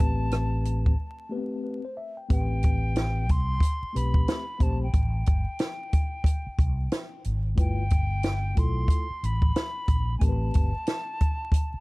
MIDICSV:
0, 0, Header, 1, 6, 480
1, 0, Start_track
1, 0, Key_signature, 0, "minor"
1, 0, Tempo, 659341
1, 1674, Time_signature, 4, 2, 24, 8
1, 8592, End_track
2, 0, Start_track
2, 0, Title_t, "Flute"
2, 0, Program_c, 0, 73
2, 0, Note_on_c, 0, 81, 97
2, 962, Note_off_c, 0, 81, 0
2, 1684, Note_on_c, 0, 79, 97
2, 2410, Note_on_c, 0, 84, 118
2, 2421, Note_off_c, 0, 79, 0
2, 2891, Note_on_c, 0, 83, 98
2, 2902, Note_off_c, 0, 84, 0
2, 3370, Note_on_c, 0, 81, 85
2, 3381, Note_off_c, 0, 83, 0
2, 3508, Note_off_c, 0, 81, 0
2, 3518, Note_on_c, 0, 79, 73
2, 5254, Note_off_c, 0, 79, 0
2, 5529, Note_on_c, 0, 79, 109
2, 6250, Note_on_c, 0, 84, 104
2, 6261, Note_off_c, 0, 79, 0
2, 6736, Note_on_c, 0, 83, 98
2, 6747, Note_off_c, 0, 84, 0
2, 7405, Note_off_c, 0, 83, 0
2, 7417, Note_on_c, 0, 80, 54
2, 7456, Note_on_c, 0, 81, 96
2, 7467, Note_off_c, 0, 80, 0
2, 8592, Note_off_c, 0, 81, 0
2, 8592, End_track
3, 0, Start_track
3, 0, Title_t, "Tine electric piano"
3, 0, Program_c, 1, 4
3, 0, Note_on_c, 1, 57, 72
3, 0, Note_on_c, 1, 60, 76
3, 0, Note_on_c, 1, 67, 64
3, 1, Note_on_c, 1, 71, 79
3, 670, Note_off_c, 1, 57, 0
3, 673, Note_off_c, 1, 60, 0
3, 676, Note_off_c, 1, 67, 0
3, 680, Note_off_c, 1, 71, 0
3, 941, Note_on_c, 1, 57, 73
3, 947, Note_on_c, 1, 59, 51
3, 955, Note_on_c, 1, 67, 65
3, 962, Note_on_c, 1, 71, 76
3, 995, Note_on_c, 1, 60, 68
3, 1008, Note_off_c, 1, 59, 0
3, 1185, Note_off_c, 1, 71, 0
3, 1194, Note_on_c, 1, 71, 56
3, 1304, Note_off_c, 1, 57, 0
3, 1311, Note_off_c, 1, 67, 0
3, 1331, Note_off_c, 1, 60, 0
3, 1333, Note_off_c, 1, 71, 0
3, 1344, Note_on_c, 1, 72, 75
3, 1432, Note_off_c, 1, 72, 0
3, 1434, Note_on_c, 1, 76, 76
3, 1573, Note_off_c, 1, 76, 0
3, 1580, Note_on_c, 1, 79, 55
3, 1663, Note_on_c, 1, 57, 65
3, 1671, Note_on_c, 1, 60, 65
3, 1679, Note_on_c, 1, 67, 61
3, 1685, Note_on_c, 1, 71, 75
3, 1808, Note_off_c, 1, 79, 0
3, 2351, Note_off_c, 1, 57, 0
3, 2355, Note_off_c, 1, 60, 0
3, 2359, Note_off_c, 1, 67, 0
3, 2362, Note_off_c, 1, 71, 0
3, 2858, Note_on_c, 1, 57, 56
3, 2869, Note_on_c, 1, 60, 52
3, 2875, Note_on_c, 1, 67, 56
3, 2883, Note_on_c, 1, 71, 69
3, 3223, Note_off_c, 1, 57, 0
3, 3228, Note_off_c, 1, 60, 0
3, 3231, Note_off_c, 1, 67, 0
3, 3236, Note_off_c, 1, 71, 0
3, 3342, Note_on_c, 1, 57, 71
3, 3347, Note_on_c, 1, 60, 62
3, 3354, Note_on_c, 1, 67, 67
3, 3360, Note_on_c, 1, 72, 77
3, 3532, Note_off_c, 1, 57, 0
3, 3534, Note_off_c, 1, 60, 0
3, 3538, Note_off_c, 1, 67, 0
3, 3541, Note_off_c, 1, 72, 0
3, 5499, Note_on_c, 1, 57, 65
3, 5508, Note_on_c, 1, 64, 56
3, 5514, Note_on_c, 1, 65, 64
3, 5522, Note_on_c, 1, 71, 71
3, 5690, Note_off_c, 1, 57, 0
3, 5694, Note_off_c, 1, 64, 0
3, 5698, Note_off_c, 1, 65, 0
3, 5702, Note_off_c, 1, 71, 0
3, 6224, Note_on_c, 1, 57, 58
3, 6230, Note_on_c, 1, 64, 54
3, 6238, Note_on_c, 1, 65, 53
3, 6246, Note_on_c, 1, 69, 63
3, 6586, Note_off_c, 1, 57, 0
3, 6589, Note_off_c, 1, 64, 0
3, 6593, Note_off_c, 1, 65, 0
3, 6597, Note_off_c, 1, 69, 0
3, 7418, Note_on_c, 1, 57, 66
3, 7425, Note_on_c, 1, 60, 59
3, 7435, Note_on_c, 1, 67, 58
3, 7439, Note_on_c, 1, 70, 56
3, 7489, Note_on_c, 1, 71, 75
3, 7494, Note_off_c, 1, 70, 0
3, 7783, Note_off_c, 1, 57, 0
3, 7786, Note_off_c, 1, 60, 0
3, 7791, Note_off_c, 1, 67, 0
3, 7818, Note_off_c, 1, 71, 0
3, 8592, End_track
4, 0, Start_track
4, 0, Title_t, "Fretless electric bass"
4, 0, Program_c, 2, 35
4, 0, Note_on_c, 2, 33, 100
4, 687, Note_off_c, 2, 33, 0
4, 1677, Note_on_c, 2, 33, 95
4, 2402, Note_off_c, 2, 33, 0
4, 2402, Note_on_c, 2, 36, 80
4, 2603, Note_off_c, 2, 36, 0
4, 2880, Note_on_c, 2, 35, 87
4, 3082, Note_off_c, 2, 35, 0
4, 3354, Note_on_c, 2, 34, 99
4, 3558, Note_off_c, 2, 34, 0
4, 3597, Note_on_c, 2, 33, 98
4, 3800, Note_off_c, 2, 33, 0
4, 3841, Note_on_c, 2, 31, 88
4, 3962, Note_off_c, 2, 31, 0
4, 4797, Note_on_c, 2, 36, 93
4, 5000, Note_off_c, 2, 36, 0
4, 5281, Note_on_c, 2, 32, 97
4, 5483, Note_off_c, 2, 32, 0
4, 5518, Note_on_c, 2, 31, 99
4, 6207, Note_off_c, 2, 31, 0
4, 6244, Note_on_c, 2, 35, 95
4, 6444, Note_off_c, 2, 35, 0
4, 6721, Note_on_c, 2, 33, 93
4, 6922, Note_off_c, 2, 33, 0
4, 7196, Note_on_c, 2, 34, 76
4, 7400, Note_off_c, 2, 34, 0
4, 7438, Note_on_c, 2, 33, 97
4, 7641, Note_off_c, 2, 33, 0
4, 7685, Note_on_c, 2, 31, 87
4, 7804, Note_off_c, 2, 31, 0
4, 8592, End_track
5, 0, Start_track
5, 0, Title_t, "Muted fretless electric bass strokes"
5, 2784, Note_on_c, 9, 29, 42
5, 2857, Note_off_c, 9, 29, 0
5, 4707, Note_on_c, 9, 29, 46
5, 4780, Note_off_c, 9, 29, 0
5, 6626, Note_on_c, 9, 29, 40
5, 6699, Note_off_c, 9, 29, 0
5, 8545, Note_on_c, 9, 29, 47
5, 8592, Note_off_c, 9, 29, 0
5, 8592, End_track
6, 0, Start_track
6, 0, Title_t, "Drums"
6, 2, Note_on_c, 9, 36, 91
6, 74, Note_off_c, 9, 36, 0
6, 228, Note_on_c, 9, 42, 77
6, 237, Note_on_c, 9, 37, 99
6, 301, Note_off_c, 9, 42, 0
6, 310, Note_off_c, 9, 37, 0
6, 475, Note_on_c, 9, 42, 71
6, 548, Note_off_c, 9, 42, 0
6, 627, Note_on_c, 9, 36, 78
6, 700, Note_off_c, 9, 36, 0
6, 1674, Note_on_c, 9, 42, 77
6, 1675, Note_on_c, 9, 36, 90
6, 1747, Note_off_c, 9, 42, 0
6, 1748, Note_off_c, 9, 36, 0
6, 1912, Note_on_c, 9, 42, 77
6, 1922, Note_on_c, 9, 36, 87
6, 1985, Note_off_c, 9, 42, 0
6, 1995, Note_off_c, 9, 36, 0
6, 2152, Note_on_c, 9, 42, 76
6, 2161, Note_on_c, 9, 38, 106
6, 2225, Note_off_c, 9, 42, 0
6, 2234, Note_off_c, 9, 38, 0
6, 2396, Note_on_c, 9, 42, 62
6, 2399, Note_on_c, 9, 36, 83
6, 2468, Note_off_c, 9, 42, 0
6, 2472, Note_off_c, 9, 36, 0
6, 2624, Note_on_c, 9, 36, 91
6, 2638, Note_on_c, 9, 42, 108
6, 2697, Note_off_c, 9, 36, 0
6, 2711, Note_off_c, 9, 42, 0
6, 2883, Note_on_c, 9, 42, 84
6, 2956, Note_off_c, 9, 42, 0
6, 3015, Note_on_c, 9, 36, 83
6, 3088, Note_off_c, 9, 36, 0
6, 3116, Note_on_c, 9, 42, 81
6, 3120, Note_on_c, 9, 38, 97
6, 3189, Note_off_c, 9, 42, 0
6, 3193, Note_off_c, 9, 38, 0
6, 3351, Note_on_c, 9, 36, 90
6, 3353, Note_on_c, 9, 42, 64
6, 3424, Note_off_c, 9, 36, 0
6, 3426, Note_off_c, 9, 42, 0
6, 3593, Note_on_c, 9, 42, 73
6, 3594, Note_on_c, 9, 36, 101
6, 3666, Note_off_c, 9, 42, 0
6, 3667, Note_off_c, 9, 36, 0
6, 3831, Note_on_c, 9, 42, 74
6, 3841, Note_on_c, 9, 36, 102
6, 3904, Note_off_c, 9, 42, 0
6, 3914, Note_off_c, 9, 36, 0
6, 4068, Note_on_c, 9, 42, 85
6, 4077, Note_on_c, 9, 38, 108
6, 4141, Note_off_c, 9, 42, 0
6, 4150, Note_off_c, 9, 38, 0
6, 4315, Note_on_c, 9, 42, 67
6, 4318, Note_on_c, 9, 36, 93
6, 4388, Note_off_c, 9, 42, 0
6, 4391, Note_off_c, 9, 36, 0
6, 4543, Note_on_c, 9, 36, 88
6, 4558, Note_on_c, 9, 42, 98
6, 4616, Note_off_c, 9, 36, 0
6, 4630, Note_off_c, 9, 42, 0
6, 4795, Note_on_c, 9, 36, 98
6, 4801, Note_on_c, 9, 42, 77
6, 4867, Note_off_c, 9, 36, 0
6, 4874, Note_off_c, 9, 42, 0
6, 5035, Note_on_c, 9, 42, 89
6, 5039, Note_on_c, 9, 38, 103
6, 5107, Note_off_c, 9, 42, 0
6, 5112, Note_off_c, 9, 38, 0
6, 5274, Note_on_c, 9, 42, 64
6, 5347, Note_off_c, 9, 42, 0
6, 5514, Note_on_c, 9, 42, 74
6, 5515, Note_on_c, 9, 36, 103
6, 5587, Note_off_c, 9, 42, 0
6, 5588, Note_off_c, 9, 36, 0
6, 5754, Note_on_c, 9, 42, 80
6, 5762, Note_on_c, 9, 36, 99
6, 5826, Note_off_c, 9, 42, 0
6, 5835, Note_off_c, 9, 36, 0
6, 5992, Note_on_c, 9, 42, 86
6, 6001, Note_on_c, 9, 38, 106
6, 6065, Note_off_c, 9, 42, 0
6, 6074, Note_off_c, 9, 38, 0
6, 6237, Note_on_c, 9, 42, 70
6, 6240, Note_on_c, 9, 36, 84
6, 6310, Note_off_c, 9, 42, 0
6, 6313, Note_off_c, 9, 36, 0
6, 6465, Note_on_c, 9, 36, 96
6, 6480, Note_on_c, 9, 42, 97
6, 6538, Note_off_c, 9, 36, 0
6, 6553, Note_off_c, 9, 42, 0
6, 6723, Note_on_c, 9, 42, 81
6, 6796, Note_off_c, 9, 42, 0
6, 6856, Note_on_c, 9, 36, 83
6, 6929, Note_off_c, 9, 36, 0
6, 6957, Note_on_c, 9, 42, 84
6, 6961, Note_on_c, 9, 38, 101
6, 7030, Note_off_c, 9, 42, 0
6, 7034, Note_off_c, 9, 38, 0
6, 7193, Note_on_c, 9, 36, 90
6, 7194, Note_on_c, 9, 42, 65
6, 7266, Note_off_c, 9, 36, 0
6, 7267, Note_off_c, 9, 42, 0
6, 7434, Note_on_c, 9, 42, 83
6, 7437, Note_on_c, 9, 36, 91
6, 7507, Note_off_c, 9, 42, 0
6, 7509, Note_off_c, 9, 36, 0
6, 7672, Note_on_c, 9, 42, 71
6, 7683, Note_on_c, 9, 36, 102
6, 7745, Note_off_c, 9, 42, 0
6, 7756, Note_off_c, 9, 36, 0
6, 7910, Note_on_c, 9, 42, 83
6, 7919, Note_on_c, 9, 38, 100
6, 7983, Note_off_c, 9, 42, 0
6, 7992, Note_off_c, 9, 38, 0
6, 8157, Note_on_c, 9, 42, 62
6, 8160, Note_on_c, 9, 36, 88
6, 8230, Note_off_c, 9, 42, 0
6, 8233, Note_off_c, 9, 36, 0
6, 8384, Note_on_c, 9, 36, 81
6, 8398, Note_on_c, 9, 42, 105
6, 8457, Note_off_c, 9, 36, 0
6, 8471, Note_off_c, 9, 42, 0
6, 8592, End_track
0, 0, End_of_file